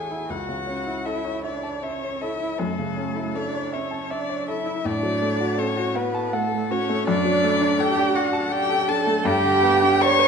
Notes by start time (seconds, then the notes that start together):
Already playing: A1 E2 C#4 E4 G#4 A4 C#5 E5 G#5 A5
0.11 E4
0.29 C#2 F#4 F#5
0.49 C#3
0.67 C#4
0.86 E4
1.06 E4 A4 E5
1.24 C#5
1.44 D4 D5 E5
1.63 A5
1.83 C#4 C#5 E5
2.02 C#5
2.21 E4 A4 E5
2.41 E4
2.59 F#2 A3 A4
2.79 C#3
2.97 C#4
3.16 E4
3.34 D4 A4 D5
3.54 C#5
3.73 C#4 C#5 E5
3.91 A5
4.10 D4 D5 E5
4.29 C#5
4.48 E4 A4 E5
4.66 E4
4.85 A2 D4 D5
5.03 F#3
5.21 A3
5.40 F#4
5.58 C#4 A4 C#5
5.77 F#4
5.95 B3 B4 F#5
6.14 A5
6.33 A3 A4 F#5
6.52 A4
6.71 C#4 F#4 C#5
6.89 A3
7.07 F#2 D4 D5
7.25 F#3
7.43 A3
7.61 D4
7.79 G4 A4 G5
7.97 D4
8.15 F#4 D5 F#5
8.33 A5
8.51 G4 D5 G5
8.69 A4
8.88 D4 A4 A5
9.06 A3
9.25 G2 G4 G5
9.44 D3
9.63 B3
9.82 D4
10.00 C#5 D5 C#6
10.19 B4